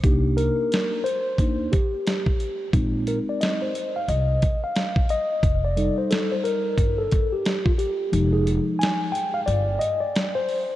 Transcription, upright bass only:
X:1
M:4/4
L:1/16
Q:"Swing 16ths" 1/4=89
K:Cm
V:1 name="Upright bass" clef=bass
C,,3 z4 z D,,2 z6 | B,,,3 z4 z C,,2 z6 | F,,,3 z4 z G,,,2 z6 | F,,,3 z4 z G,,,2 z6 |]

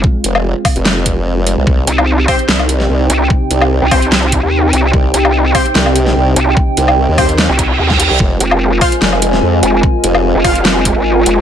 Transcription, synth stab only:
X:1
M:4/4
L:1/16
Q:"Swing 16ths" 1/4=147
K:Fm
V:1 name="Synth stab"
z16 | z6 [CGc] z8 z | z6 [CGc]8- [CGc]2- | [CGc]6 [CGc] z8 z |
z6 [CGc]8- [CGc]2 | z6 [Fcf] z8 z | z6 [Fcf]8- [Fcf]2 |]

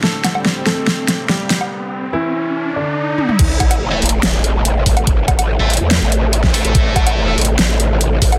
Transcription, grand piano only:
X:1
M:4/4
L:1/8
Q:1/4=143
K:Am
V:1 name="Grand piano"
[A,A]3 [A,A]3 [G,G]2- | [G,G]2 [E,E]3 [D,D]3 | z8 | z8 |
z8 |]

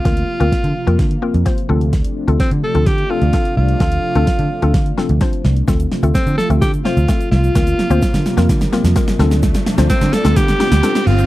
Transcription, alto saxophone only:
X:1
M:4/4
L:1/8
Q:1/4=128
K:Dm
V:1 name="Alto saxophone"
F4- F z3 | z2 C A G F2 F- | F4- F z3 | z2 C A G F2 F- |
F4- F z3 | z2 C A G3 F |]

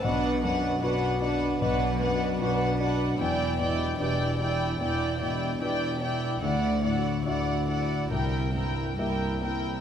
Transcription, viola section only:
X:1
M:4/4
L:1/8
Q:1/4=74
K:Em
V:1 name="Viola section"
D D D D D D D D | E E E E E E E E | E E E E E E E E |]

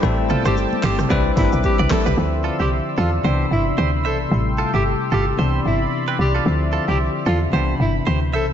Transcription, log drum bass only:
X:1
M:4/4
L:1/16
Q:"Swing 16ths" 1/4=112
K:C
V:1 name="Log drum bass" clef=bass
A,,,3 G,,,2 z G,,,2 C,,2 G,,, B,,, z C,, z C,, | D,,3 C,,2 z E,,2 C,,2 G,,,2 D,,2 B,,,2 | A,,,3 G,,,2 z G,,,2 C,,2 G,,,2 z2 C,,2 | D,,3 C,,2 z E,,2 C,,2 G,,,2 D,,2 B,,,2 |]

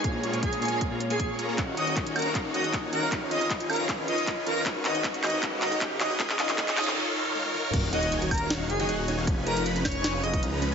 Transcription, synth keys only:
X:1
M:4/4
L:1/16
Q:1/4=156
K:Ebm
V:1 name="Synth keys"
[B,,B,FAd]3 [B,,B,FAd]2 z [B,,B,FAd] z2 [B,,B,FAd]3 [B,FAd]2 z2 | z16 | z16 | z16 |
z16 | z16 | z16 |]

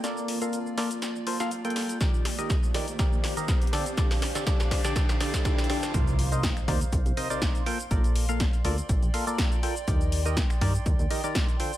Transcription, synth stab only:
X:1
M:4/4
L:1/16
Q:"Swing 16ths" 1/4=122
K:Eblyd
V:1 name="Synth stab"
[B,FABd]3 [B,FABf] z2 [B,FABd] z3 [B,FABc] [B,FABf] z [B,FABg]3 | [E,EGBd]3 [E,EGBe] z2 [E,EGBd] z [E,EGBd]3 [E,EGBe] z2 [D,DGAd] z | [D,DGAd]3 [D,DGAd] [D,DGAd]3 [D,DGAd] [D,DGAd]2 [D,DGAd]2 [D,DGAd]2 [D,DGAd]2 | [C,EBcd]3 [C,EBce] z2 [C,EBcd] z3 [C,EBce] [C,EBcd]3 [B,FABg] z |
[B,FABd]3 [B,FABf] z2 [B,FABd] z3 [B,FABf] [B,FABd]3 [FABg] z | [E,EGBd]3 [E,EGBe] z2 [E,EGBd] z3 [E,EGBe] [E,EGBd]3 [D,FAcg] z |]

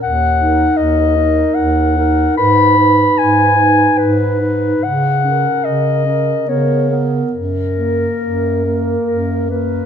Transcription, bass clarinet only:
X:1
M:3/4
L:1/8
Q:1/4=72
K:F#
V:1 name="Bass clarinet" clef=bass
D,,2 D,,2 D,,2 | G,,2 G,,2 G,,2 | C,2 C,2 C,2 | F,,2 F,,2 F,,2 |]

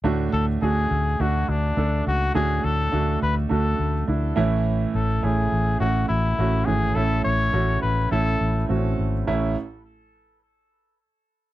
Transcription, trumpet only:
X:1
M:4/4
L:1/8
Q:1/4=104
K:A
V:1 name="Trumpet"
z A G2 F D2 F | G A2 B A2 z2 | z A G2 F E2 G | A c2 B A2 z2 |
z8 |]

